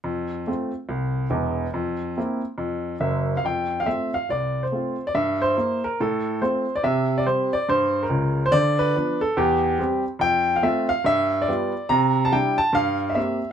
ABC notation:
X:1
M:4/4
L:1/16
Q:"Swing" 1/4=142
K:F
V:1 name="Grand piano"
z16 | z12 e3 f | g3 f e2 f2 d3 c4 d | e2 c4 B2 A4 c3 d |
e3 d c2 d2 c3 B4 c | d2 =B4 A2 G4 z4 | g3 f e2 f2 e3 d4- d | b3 a g2 a2 f3 e e3 z |]
V:2 name="Grand piano"
F,,4 [A,CF]4 C,,4 [E,,,E,,]4 | F,,4 [B,CE]4 F,,4 [_G,,,_G,,]4 | F,,4 [A,CF]4 C,,4 [A,CF]4 | G,,4 [B,E]4 A,,4 [A,CF]4 |
C,4 [G,CG]4 G,,4 [_D,,_D,]4 | D,4 [F,=B,D]4 E,,4 [G,CG]4 | F,,4 [A,CF]4 G,,4 [G,=B,F]4 | C,4 [G,DE]4 G,,4 [B,CG]4 |]